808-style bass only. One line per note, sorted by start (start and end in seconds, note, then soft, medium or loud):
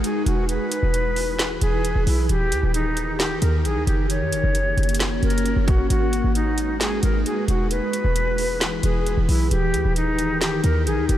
0.26 0.59 E1 loud
0.83 1.59 E1 loud
1.62 1.94 E1 loud
1.96 2.06 E1 loud
2.07 2.28 B1 loud
2.29 2.53 D#1 loud
2.52 2.63 D#2 loud
2.63 3.39 D#1 loud
3.42 3.66 D#2 loud
3.65 3.77 A#1 loud
3.76 3.87 D#2 loud
3.87 4.23 F#1 loud
4.21 4.34 F#2 medium
4.32 4.43 F#1 loud
4.44 4.76 F#1 loud
4.77 5.21 F#1 loud
5.23 5.55 F#1 loud
5.56 5.89 F#1 loud
5.90 6.23 G#1 loud
6.24 7.00 G#1 loud
7.03 7.25 G#1 loud
7.48 7.81 E1 loud
8.04 8.80 E1 loud
8.84 9.16 E1 loud
9.17 9.28 E1 loud
9.29 9.50 B1 loud
9.51 9.75 D#1 loud
9.74 9.84 D#2 loud
9.85 10.61 D#1 loud
10.64 10.88 D#2 loud
10.86 10.99 A#1 loud
10.98 11.09 D#2 loud
11.09 11.18 F#1 loud